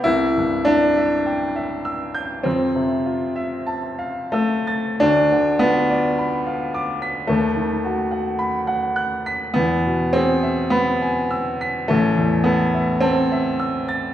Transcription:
0.04 2.41 C2 medium
0.04 0.65 E4 loud
0.37 0.86 G2 soft
0.65 2.44 D4 loud
0.65 1.15 E4 medium
0.97 1.44 E5 medium
1.26 1.73 G5 medium
1.56 2.03 E5 medium
1.85 2.33 E6 medium
2.14 2.45 G6 medium
2.43 4.97 F2 medium
2.43 3.65 C4 medium
2.76 3.23 C3 medium
3.06 3.54 F4 soft
3.36 3.85 E5 medium
3.67 4.19 A5 medium
3.99 4.54 F5 medium
4.32 5.00 A3 medium
4.32 4.88 E6 medium
4.67 5.00 A6 medium
5.00 7.26 D2 medium
5.00 5.61 D4 loud
5.32 5.78 D3 soft
5.59 7.29 B3 loud
5.59 6.07 F4 medium
5.90 6.35 D5 medium
6.19 6.63 B5 medium
6.46 6.91 F5 medium
6.74 7.19 D6 medium
7.02 7.30 B6 medium
7.27 9.53 D#2 medium
7.27 8.39 A3 medium
7.56 8.01 D#3 medium
7.85 8.29 F#4 medium
8.11 8.57 F#5 medium
8.39 8.85 B5 medium
8.67 9.15 F#5 medium
8.96 9.44 F#6 medium
9.26 9.57 B6 medium
9.54 11.85 E2 medium
9.54 10.14 B3 medium
9.86 10.33 B2 soft
10.13 10.72 C4 loud
10.13 10.62 G#4 medium
10.43 10.90 E5 medium
10.70 11.88 B3 medium
10.70 11.19 B5 medium
11.02 11.49 G#5 medium
11.31 11.78 E6 medium
11.61 11.90 B6 medium
11.88 14.14 A1 medium
11.88 12.46 A3 medium
12.17 12.63 E2 medium
12.44 13.02 B3 medium
12.44 12.92 A4 medium
12.74 13.20 E5 medium
13.01 14.14 C4 loud
13.01 13.48 A5 medium
13.32 13.78 E5 medium
13.59 14.06 E6 medium
13.88 14.14 A6 medium

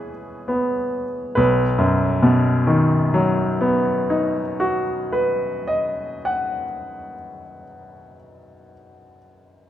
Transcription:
0.00 1.40 B2 soft
0.00 1.40 E3 soft
0.00 1.03 G#4 soft
0.00 1.35 B4 medium
0.00 1.41 C#5 soft
0.48 1.37 B3 soft
1.35 4.41 B1 soft
1.35 4.39 B4 soft
1.78 4.82 F#2 soft
2.22 5.26 B2 soft
2.67 5.71 D#3 soft
3.14 6.18 F#3 soft
3.61 6.65 B3 soft
4.10 7.14 D#4 soft
4.60 7.64 F#4 soft
5.12 8.16 B4 soft
5.67 8.71 D#5 soft
6.25 9.18 F#5 soft

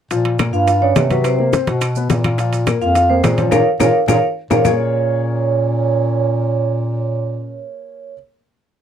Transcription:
0.11 0.51 A#2 medium
0.11 0.34 F3 medium
0.11 0.35 F4 medium
0.11 high bongo medium
0.11 high conga soft
0.11 high timbale medium
0.11 maracas medium
0.25 high conga soft
0.25 high timbale medium
0.39 0.63 A#3 medium
0.39 0.63 A#4 medium
0.39 high bongo medium
0.39 high conga medium
0.39 high timbale medium
0.39 low timbale medium
0.39 claves medium
0.39 maracas medium
0.53 0.93 G2 medium
0.53 0.80 F4 medium
0.53 0.83 F5 loud
0.53 maracas soft
0.67 0.80 F4 medium
0.67 0.80 F5 medium
0.67 high bongo medium
0.67 high conga soft
0.67 high timbale medium
0.67 maracas medium
0.82 1.08 C#4 medium
0.82 0.94 D4 medium
0.82 1.11 C#5 medium
0.82 0.94 D5 medium
0.82 high conga soft
0.96 1.62 C3 medium
0.96 1.08 B3 medium
0.96 1.08 B4 medium
0.96 high bongo medium
0.96 low bongo medium
0.96 high conga medium
0.96 high timbale medium
0.96 low timbale medium
0.96 claves medium
0.96 maracas medium
1.10 1.34 F#3 medium
1.10 1.23 B3 medium
1.10 1.34 F#4 medium
1.10 1.25 B4 medium
1.10 high conga medium
1.10 high timbale medium
1.10 maracas soft
1.24 1.77 C4 medium
1.24 1.78 C5 medium
1.24 high bongo medium
1.24 high conga soft
1.24 high timbale medium
1.24 claves medium
1.24 maracas medium
1.39 1.51 A#3 medium
1.39 1.51 A#4 medium
1.39 high bongo soft
1.39 high conga soft
1.53 1.65 C4 medium
1.53 1.65 C5 medium
1.53 high bongo medium
1.53 high conga medium
1.53 high timbale medium
1.53 low timbale medium
1.53 maracas medium
1.67 2.07 B2 medium
1.67 1.91 F#4 medium
1.67 1.91 F#5 medium
1.67 high bongo soft
1.67 high conga medium
1.67 high timbale medium
1.67 maracas soft
1.81 high bongo medium
1.81 high conga soft
1.81 high timbale medium
1.81 claves medium
1.81 maracas medium
1.96 2.20 B3 medium
1.96 2.20 B4 medium
1.96 high conga soft
1.96 maracas medium
2.10 2.76 A#2 medium
2.10 high bongo medium
2.10 low bongo medium
2.10 high conga medium
2.10 high timbale medium
2.10 low timbale medium
2.10 maracas medium
2.24 2.36 F4 medium
2.24 2.37 F5 medium
2.24 high bongo soft
2.24 high conga medium
2.24 high timbale medium
2.24 claves medium
2.24 maracas soft
2.38 2.62 F3 medium
2.38 2.63 F4 medium
2.38 high bongo medium
2.38 high conga soft
2.38 high timbale medium
2.38 maracas medium
2.53 high conga soft
2.53 high timbale medium
2.53 maracas medium
2.67 2.91 A#3 medium
2.67 2.91 A#4 medium
2.67 high bongo medium
2.67 high conga medium
2.67 high timbale medium
2.67 low timbale medium
2.67 claves medium
2.67 maracas medium
2.81 3.21 F2 medium
2.81 3.08 F4 medium
2.81 3.11 F5 loud
2.81 maracas soft
2.95 3.07 F4 medium
2.95 3.08 F5 medium
2.95 high bongo medium
2.95 high conga soft
2.95 high timbale medium
2.95 maracas medium
3.10 3.21 A#3 medium
3.10 3.36 C4 medium
3.10 3.21 A#4 medium
3.10 3.39 C5 medium
3.10 high conga soft
3.24 3.50 A#2 loud
3.24 3.36 G#3 medium
3.24 3.36 G#4 medium
3.24 high bongo medium
3.24 low bongo medium
3.24 high conga medium
3.24 high timbale medium
3.24 low timbale medium
3.24 claves medium
3.24 maracas medium
3.37 3.50 F3 medium
3.37 3.51 C#4 medium
3.37 3.50 F4 medium
3.37 3.50 C#5 medium
3.37 high conga medium
3.37 high timbale medium
3.37 maracas soft
3.51 3.63 A#2 medium
3.51 3.59 C#4 medium
3.51 3.61 F4 medium
3.51 3.61 G#4 medium
3.51 3.61 A#4 loud
3.51 3.61 A#4 medium
3.51 3.61 C#5 loud
3.51 3.61 F5 medium
3.51 low bongo medium
3.51 high conga medium
3.51 high timbale medium
3.51 claves medium
3.51 maracas medium
3.80 3.91 A#2 medium
3.80 3.87 C#4 medium
3.80 3.89 F4 loud
3.80 3.89 G#4 medium
3.80 3.89 A#4 medium
3.80 3.89 C#5 medium
3.80 3.89 F5 medium
3.80 low bongo medium
3.80 high conga medium
3.80 high timbale medium
3.80 claves loud
3.80 maracas medium
4.08 4.19 A#2 loud
4.08 4.16 C#4 medium
4.08 4.17 F4 medium
4.08 4.17 G#4 medium
4.08 4.17 A#4 medium
4.08 4.17 C#5 medium
4.08 4.17 F5 medium
4.08 low bongo loud
4.08 high conga loud
4.08 high timbale medium
4.08 claves medium
4.08 maracas medium
4.50 4.61 A#2 medium
4.50 4.58 C#4 medium
4.50 4.60 F4 medium
4.50 4.60 G#4 medium
4.50 4.60 A#4 medium
4.50 4.60 C#5 medium
4.50 4.60 F5 medium
4.50 low bongo loud
4.50 high conga medium
4.50 high timbale medium
4.50 claves medium
4.50 maracas medium
4.64 7.66 A#2 medium
4.64 8.13 A#3 medium
4.64 7.66 C#4 medium
4.64 8.13 F4 medium
4.64 8.13 G#4 medium
4.64 8.13 A#4 medium
4.64 8.13 C#5 medium
4.64 8.14 C#5 medium
4.64 low bongo medium
4.64 low conga medium
4.64 low timbale medium
4.64 claves medium
4.64 maracas medium

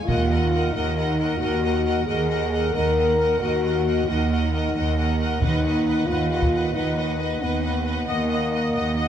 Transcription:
0.05 0.67 D#2 medium
0.05 0.68 D#2 medium
0.05 0.74 F4 medium
0.05 0.28 A#4 soft
0.05 0.29 D#5 soft
0.05 taiko soft
0.10 0.30 F#5 soft
0.30 0.52 A#4 soft
0.30 0.52 D#5 soft
0.30 0.52 F#5 soft
0.53 0.74 A#4 soft
0.53 0.74 D#5 soft
0.53 0.74 F#5 soft
0.72 1.34 D#2 medium
0.72 1.34 D#2 soft
0.72 1.40 D#4 medium
0.72 0.95 A#4 soft
0.72 0.97 D#5 soft
0.72 0.95 F#5 soft
0.97 1.18 A#4 soft
0.97 1.19 D#5 soft
0.97 1.17 F#5 soft
1.19 1.41 A#4 soft
1.19 1.40 D#5 soft
1.19 1.39 F#5 soft
1.38 2.00 D#2 soft
1.38 2.06 F#4 medium
1.38 1.62 D#5 soft
1.38 1.62 F#5 soft
1.42 1.63 A#4 soft
1.63 1.84 A#4 soft
1.63 1.86 D#5 soft
1.63 1.84 F#5 soft
1.85 2.07 A#4 soft
1.85 2.07 D#5 soft
1.85 2.06 F#5 soft
2.06 2.68 D#2 soft
2.06 2.73 G#4 medium
2.06 2.30 A#4 soft
2.06 2.28 D#5 soft
2.06 2.28 F#5 soft
2.30 2.52 A#4 soft
2.30 2.52 D#5 soft
2.30 2.52 F#5 soft
2.53 2.75 A#4 soft
2.53 2.74 D#5 soft
2.53 2.75 F#5 soft
2.72 3.34 D#2 soft
2.72 3.35 D#2 medium
2.72 3.40 A#4 medium
2.72 2.96 D#5 soft
2.72 2.97 F#5 soft
2.77 2.98 A#4 soft
2.97 3.19 A#4 soft
2.97 3.17 D#5 soft
2.97 3.20 F#5 soft
3.18 3.41 A#4 soft
3.18 3.40 D#5 soft
3.18 3.42 F#5 soft
3.40 4.00 D#2 soft
3.40 4.01 D#2 soft
3.40 4.08 F#4 medium
3.40 3.64 A#4 soft
3.40 3.63 D#5 soft
3.40 3.63 F#5 soft
3.64 3.87 A#4 soft
3.64 3.86 D#5 soft
3.64 3.85 F#5 soft
3.86 4.07 A#4 soft
3.86 4.08 D#5 soft
3.86 4.08 F#5 soft
4.08 4.67 D#2 soft
4.08 5.20 D#4 medium
4.08 4.29 A#4 soft
4.08 4.31 D#5 soft
4.08 4.30 F#5 soft
4.31 4.52 A#4 soft
4.31 4.53 D#5 soft
4.31 4.53 F#5 soft
4.53 4.75 A#4 soft
4.53 4.75 D#5 soft
4.53 4.74 F#5 soft
4.75 5.34 D#2 soft
4.75 4.98 A#4 soft
4.75 4.98 D#5 soft
4.75 4.97 F#5 soft
4.98 5.19 A#4 soft
4.98 5.20 D#5 soft
4.98 5.19 F#5 soft
5.20 5.42 A#4 soft
5.20 5.42 D#5 soft
5.20 5.42 F#5 soft
5.40 6.01 D#2 soft
5.40 6.04 D#4 medium
5.40 5.64 B4 soft
5.40 5.64 D#5 soft
5.40 5.64 F#5 soft
5.40 taiko medium
5.65 5.87 B4 soft
5.65 5.87 D#5 soft
5.65 5.86 F#5 soft
5.88 6.08 B4 soft
5.88 6.09 D#5 soft
5.88 6.08 F#5 soft
6.06 6.67 D#2 soft
6.06 6.74 F4 medium
6.06 6.31 B4 soft
6.06 6.29 F#5 soft
6.11 6.32 D#5 soft
6.31 6.53 B4 soft
6.31 6.54 D#5 soft
6.31 6.52 F#5 soft
6.42 taiko soft
6.53 6.76 B4 soft
6.53 6.74 D#5 soft
6.53 6.73 F#5 soft
6.74 7.34 D#2 soft
6.74 7.42 D#4 soft
6.74 6.97 B4 soft
6.74 6.97 D#5 soft
6.74 6.95 F#5 soft
6.97 7.20 B4 soft
6.97 7.18 D#5 soft
6.97 7.18 F#5 soft
7.19 7.42 B4 soft
7.19 7.40 D#5 soft
7.19 7.40 F#5 soft
7.41 8.00 D#2 soft
7.41 8.01 D#2 soft
7.41 8.09 B3 soft
7.41 7.64 B4 soft
7.41 7.62 D#5 soft
7.41 7.61 F#5 soft
7.62 7.86 B4 soft
7.62 7.83 D#5 soft
7.62 7.85 F#5 soft
7.85 8.08 B4 soft
7.85 8.06 D#5 soft
7.85 8.05 F#5 soft
8.07 8.67 D#2 soft
8.07 8.68 D#2 soft
8.07 9.08 A#3 medium
8.07 8.29 D#5 soft
8.07 8.30 D#5 soft
8.07 8.28 F#5 soft
8.29 8.52 D#5 soft
8.29 8.51 F#5 soft
8.52 8.74 D#5 soft
8.52 8.73 F#5 soft
8.74 9.08 D#2 soft
8.74 8.95 D#5 soft
8.74 8.96 D#5 soft
8.74 8.94 F#5 soft
8.95 9.08 D#5 soft
8.95 9.08 F#5 soft

